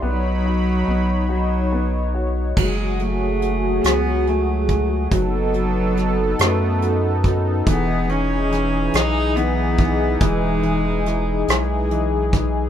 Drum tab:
CC |------|x-----|------|------|
HH |------|-xxxxx|xxxxxx|xxxxxx|
SD |------|---r--|--rr--|--rr--|
BD |------|o----o|o----o|o----o|

CC |------|
HH |xxxxxx|
SD |--rr--|
BD |o----o|